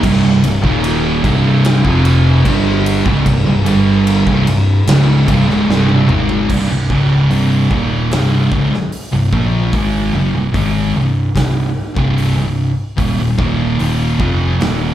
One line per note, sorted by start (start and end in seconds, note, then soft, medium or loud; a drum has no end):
0.02 0.22 C1 loud
0.02 0.22 C2 medium
0.02 0.23 G2 loud
0.02 kick loud
0.02 crash loud
0.23 0.43 C1 medium
0.23 0.42 C2 medium
0.23 0.42 G2 medium
0.43 0.63 C1 medium
0.43 0.62 C2 medium
0.43 0.62 G2 medium
0.43 ride medium
0.62 1.20 D#1 loud
0.62 1.23 D#2 loud
0.62 1.23 A#2 loud
0.62 1.23 D#3 loud
0.62 kick medium
0.84 ride medium
1.24 1.81 C1 loud
1.24 1.83 C2 medium
1.24 1.83 G2 medium
1.24 1.82 C3 loud
1.24 kick loud
1.24 ride medium
1.65 snare loud
1.65 ride loud
1.83 2.41 F1 loud
1.83 2.43 F2 loud
1.83 2.44 C3 loud
1.83 2.44 F3 loud
1.83 kick loud
2.05 ride medium
2.45 3.02 G1 medium
2.45 3.05 G2 medium
2.45 3.05 D3 loud
2.45 3.05 G3 loud
2.45 kick loud
2.45 ride loud
2.86 ride medium
3.05 3.25 C#1 medium
3.05 3.25 C#2 medium
3.05 3.25 G#2 loud
3.05 kick loud
3.26 3.45 C1 medium
3.26 3.46 C2 medium
3.26 3.46 G2 medium
3.26 kick medium
3.26 ride loud
3.47 3.66 C1 medium
3.47 3.67 C2 medium
3.47 3.66 G2 medium
3.66 4.23 G1 loud
3.66 4.26 G2 medium
3.66 4.27 D3 medium
3.66 4.27 G3 medium
3.66 ride medium
4.07 ride loud
4.27 4.46 C1 loud
4.27 4.46 C2 medium
4.27 4.47 G2 loud
4.27 kick loud
4.47 4.85 C1 medium
4.47 4.80 C2 medium
4.47 4.80 G2 medium
4.47 ride medium
4.87 5.25 C#1 medium
4.87 5.27 C#2 medium
4.87 5.27 G#2 medium
4.87 5.28 C#3 loud
4.87 snare loud
4.87 ride loud
5.28 5.47 C1 medium
5.28 5.47 C2 medium
5.28 5.48 G2 medium
5.28 kick loud
5.28 ride medium
5.47 5.67 C#1 medium
5.47 5.68 C#2 medium
5.47 5.68 G#2 loud
5.47 snare soft
5.68 6.06 C1 medium
5.68 6.08 C2 medium
5.68 6.09 G2 medium
5.68 6.09 C3 loud
5.68 snare medium
5.89 high tom medium
6.09 6.47 G#1 loud
6.09 6.49 G#2 loud
6.09 6.49 D#3 loud
6.09 6.49 G#3 loud
6.09 mid tom medium
6.29 floor tom medium
6.49 6.68 C1 loud
6.49 6.69 C2 medium
6.49 6.70 G2 loud
6.49 kick loud
6.49 crash loud
6.69 6.89 C1 medium
6.69 6.89 C2 medium
6.69 6.90 G2 medium
6.89 7.28 C#1 loud
6.89 7.29 C#2 medium
6.89 7.30 G#2 medium
6.89 7.30 C#3 medium
6.89 kick loud
7.30 7.68 C1 medium
7.30 7.70 C2 medium
7.30 7.70 G2 medium
7.30 7.70 C3 medium
7.30 open hi-hat medium
7.70 8.09 D#1 loud
7.70 8.09 D#2 medium
7.70 8.10 A#2 medium
7.70 8.11 D#3 medium
7.70 kick loud
8.10 8.49 C1 loud
8.10 8.50 C2 medium
8.10 8.51 G2 loud
8.10 8.51 C3 medium
8.10 snare loud
8.10 open hi-hat medium
8.51 8.71 C#1 medium
8.51 8.71 C#2 loud
8.51 8.71 G#2 medium
8.51 kick loud
8.72 muted distorted electric guitar stroke medium
8.72 muted picked electric bass stroke soft
8.72 snare soft
8.92 open hi-hat medium
9.12 9.32 C1 medium
9.12 9.31 C2 medium
9.12 9.32 G2 medium
9.32 9.71 A#1 medium
9.32 9.72 A#2 medium
9.32 9.72 F3 loud
9.32 9.73 A#3 loud
9.32 kick loud
9.73 10.11 G#1 loud
9.73 10.13 G#2 medium
9.73 10.13 D#3 loud
9.73 10.14 G#3 medium
9.73 kick loud
9.73 open hi-hat medium
10.13 10.33 F#1 medium
10.13 10.33 F#2 medium
10.13 10.33 C#3 medium
10.35 10.53 C1 medium
10.35 10.53 C2 medium
10.35 10.54 G2 medium
10.53 10.92 G#1 medium
10.53 10.94 G#2 medium
10.53 10.94 D#3 medium
10.53 10.94 G#3 medium
10.53 kick loud
10.53 open hi-hat medium
10.94 11.33 C1 medium
10.94 11.28 C2 medium
10.94 11.28 G2 medium
11.34 11.74 C1 medium
11.34 11.68 C2 medium
11.34 11.68 G2 medium
11.34 kick medium
11.34 snare loud
11.34 open hi-hat medium
11.95 12.34 C1 loud
11.95 12.35 C2 medium
11.95 12.35 G2 medium
11.95 12.36 C3 medium
11.95 kick loud
12.18 open hi-hat medium
12.36 12.76 C1 medium
12.36 12.69 C2 medium
12.36 12.70 G2 medium
12.96 13.17 D#1 loud
12.96 13.16 D#2 medium
12.96 13.16 A#2 loud
12.96 kick loud
12.96 open hi-hat medium
13.17 13.38 D#1 medium
13.17 13.36 D#2 medium
13.17 13.37 A#2 medium
13.37 13.77 D#1 loud
13.37 13.77 D#2 medium
13.37 13.77 A#2 medium
13.37 13.78 D#3 medium
13.37 kick loud
13.78 14.18 D#1 medium
13.78 14.18 D#2 medium
13.78 14.19 A#2 medium
13.78 14.19 D#3 medium
13.78 open hi-hat medium
14.19 14.58 F1 medium
14.19 14.58 F2 medium
14.19 14.59 C3 medium
14.19 14.60 F3 medium
14.19 kick loud
14.59 14.94 D#1 loud
14.59 14.94 D#2 medium
14.59 14.94 A#2 loud
14.59 14.94 D#3 loud
14.59 snare loud
14.59 open hi-hat medium